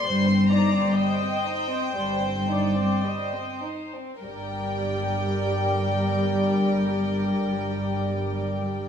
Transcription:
<<
  \new Staff \with { instrumentName = "Violin section" } { \time 4/4 \key g \minor \tempo 4 = 52 c'''8 bes''8 g''2~ g''8 r8 | g''1 | }
  \new Staff \with { instrumentName = "Viola section" } { \time 4/4 \key g \minor c''8 d''8 ees''4 c''8 d''8 ees''8 r8 | <g g'>1 | }
  \new Staff \with { instrumentName = "Violin section" } { \time 4/4 \key g \minor << { c''2.~ c''8. r16 | <bes' d''>1 | } \\ { g16 c'16 ees'16 c'16 g16 c'16 ees'16 c'16 g16 c'16 ees'16 c'16 g16 c'16 ees'16 c'16 | r1 | } >> }
  \new Staff \with { instrumentName = "Cello section" } { \clef bass \time 4/4 \key g \minor g,4 r4 g,4 r4 | g,1 | }
  \new Staff \with { instrumentName = "Double bass section" } { \clef bass \time 4/4 \key g \minor g,,4 r4 g,,4 r4 | g,,1 | }
>>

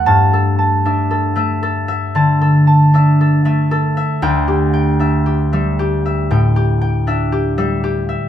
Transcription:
<<
  \new Staff \with { instrumentName = "Harp" } { \time 4/4 \key g \major \tempo 4 = 58 << { a''1 | g''1 | } \\ { a'16 a'16 a''16 e''16 a'16 e''16 a'16 e''16 a''16 a'16 a''16 e''16 a'16 e''16 a'16 e''16~ | e''16 g'16 g''16 e''16 g'16 e''16 g'16 e''16 g''16 g'16 g''16 e''16 g'16 e''16 g'16 e''16 | } >> }
  \new Staff \with { instrumentName = "Harp" } { \time 4/4 \key g \major <g, a>8. d'8 a8. d8. d'8 a8. | d,8. d'8 g8. a,8. d'8 g8. | }
>>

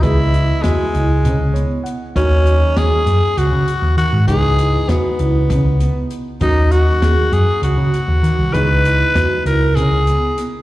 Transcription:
<<
  \new Staff \with { instrumentName = "Tenor saxophone" } { \time 7/8 \key cis \dorian \tempo 4 = 99 e'4 gis2 r8 | cis'4 gis'4 fis'4 fis'8 | gis'4 b2 r8 | dis'8 fis'4 gis'8 fis'4. |
b'4. ais'8 gis'4 r8 | }
  \new Staff \with { instrumentName = "Vibraphone" } { \time 7/8 \key cis \dorian gis'8 e'8 fis'8 e'8 cis'8 b4 | fis'4 gis'4 fis'4 fis'8 | gis'8 e'8 fis'8 e'8 cis'8 b4 | fis'4 gis'4 fis'4 fis'8 |
gis'8 e'8 fis'8 e'8 cis'8 b4 | }
  \new Staff \with { instrumentName = "Grand piano" } { \time 7/8 \key cis \dorian r2 r8 cis''8 fis''8 | r2. r8 | r2. r8 | r2. r8 |
r2. r8 | }
  \new Staff \with { instrumentName = "Grand piano" } { \time 7/8 \key cis \dorian <e gis b dis''>2.~ <e gis b dis''>8 | <fis ais cis' dis'>2.~ <fis ais cis' dis'>8 | <e gis b dis'>2.~ <e gis b dis'>8 | <fis ais cis' dis'>2.~ <fis ais cis' dis'>8 |
<e gis b dis'>2.~ <e gis b dis'>8 | }
  \new Staff \with { instrumentName = "Picked electric bass" } { \clef bass \time 7/8 \key cis \dorian cis,4 e,16 r16 cis,8 cis16 cis,8 r8. | dis,4 dis,16 r16 fis,16 r16 cis,16 cis16 r16 dis,16 dis16 gis,16 | cis,4 e,16 r16 cis,8 cis16 cis,8 r8. | dis,4 dis,16 r16 fis,16 r16 cis,16 cis16 r16 dis,16 dis16 bis,,16 |
cis,4 e,16 r16 cis,8 cis16 cis,8 r8. | }
  \new DrumStaff \with { instrumentName = "Drums" } \drummode { \time 7/8 <hh bd>8 hh8 <hh sn>8 hh8 hh8 hh8 hh8 | <hh bd>8 hh8 <hh sn>8 hh8 hh8 hh8 hh8 | <hh bd>8 hh8 <hh sn>8 hh8 <hh bd>8 hh8 hh8 | <hh bd>8 hh8 <hh sn>8 hh8 hh8 <hh sn>8 hh8 |
<hh bd>8 hh8 <hh sn>8 hh8 hh8 hh8 <hh sn>8 | }
>>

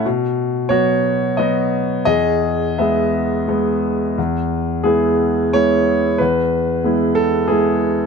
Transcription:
<<
  \new Staff \with { instrumentName = "Grand piano" } { \time 3/4 \key e \major \tempo 4 = 90 r4 <fis' cis''>4 <fis' dis''>4 | <gis' dis''>4 <gis' e''>4. r8 | r4 gis'4 cis''4 | b'4. a'8 gis'4 | }
  \new Staff \with { instrumentName = "Grand piano" } { \time 3/4 \key e \major b,4 <fis b>4 <fis b>4 | e,4 <gis b>4 <gis b>4 | e,4 <gis b e'>4 <gis b e'>4 | e,4 <gis b e'>4 <gis b e'>4 | }
>>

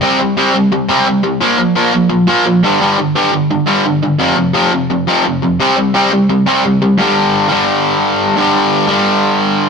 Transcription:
\new Staff \with { instrumentName = "Overdriven electric guitar" } { \clef bass \time 4/4 \key c \major \tempo 4 = 173 <c g c'>8 <c g>8 <c g c'>8 <c g>8 <c g>8 <c g c'>8 <c g>8 <c g>8 | <bes, f bes>8 <bes, f>8 <bes, f bes>8 <bes, f>8 <bes, f>8 <bes, f bes>8 <bes, f>8 <g, d g>8 | <g, d g>8 <g, d>8 <g, d g>8 <g, d>8 <g, d>8 <g, d g>8 <g, d>8 <g, d>8 | <f, c f>8 <f, c>8 <f, c f>8 <f, c>8 <f, c>8 <f, c f>8 <f, c>8 <f, c>8 |
<c g c'>8 <c g>8 <c g c'>8 <c g>8 <c g>8 <c g c'>8 <c g>8 <c g>8 | <g, d g>4. <g, d g>2~ <g, d g>8 | <g, d g>4. <g, d g>2~ <g, d g>8 | }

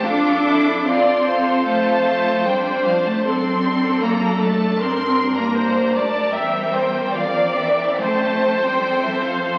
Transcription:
<<
  \new Staff \with { instrumentName = "Violin section" } { \time 4/4 \key f \major \tempo 4 = 76 d'''4 c'''4 a''4 g''8 f''16 a''16 | c'''4 bes''8 a''8 c'''8. bes''8. a''8 | g''4 f''8 e''8 a''8. g''8 e''16 f''8 | }
  \new Staff \with { instrumentName = "Viola section" } { \time 4/4 \key f \major a'4 d''8 c''2~ c''8 | a'8 a'4. bes'4 c''8 d''8 | e''8 c''8 d''4 c''2 | }
  \new Staff \with { instrumentName = "Violin section" } { \time 4/4 \key f \major << { a'4 a'2 c''4 | a'2 bes'2~ | bes'2 a'2 | } \\ { f'8 e'8 f'8 f'4. d'4 | d'1 | c'1 | } >> }
  \new Staff \with { instrumentName = "Cello section" } { \time 4/4 \key f \major d'4 c'4 a4 g8 f16 a16 | c'4 bes8 a8 c'8. bes8. a8 | g4 f8 e8 a8. g8 e16 f8 | }
  \new Staff \with { instrumentName = "Double bass section" } { \clef bass \time 4/4 \key f \major f,1 | fis,2 g,2 | e,2 f,2 | }
>>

